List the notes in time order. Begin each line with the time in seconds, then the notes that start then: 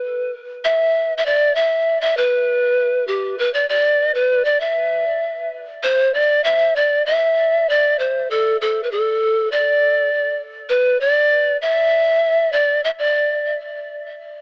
Already playing: B4
0.65 E5
1.18 E5
1.26 D5
1.55 E5
2.01 E5
2.17 B4
3.08 G4
3.38 B4
3.54 D5
3.69 D5
4.15 B4
4.45 D5
4.61 E5
5.83 C5
6.14 D5
6.44 E5
6.76 D5
7.06 E5
7.69 D5
7.99 C5
8.31 A4
8.61 A4
8.83 B4
8.91 A4
9.52 D5
10.69 B4
11.01 D5
11.62 E5
12.53 D5
12.84 E5
12.99 D5